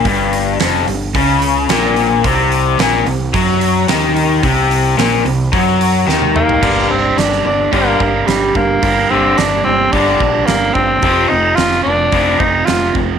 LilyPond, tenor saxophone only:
\new Staff \with { instrumentName = "Tenor saxophone" } { \time 4/4 \key g \minor \tempo 4 = 109 r1 | r1 | r2. r8 bes8~ | bes8 c'8 d'8 d'8 bes4 g8 bes8~ |
bes8 c'8 d'8 c'8 d'4 bes8 c'8~ | c'8 ees'8 f'8 d'4 ees'8 f'8 r8 | }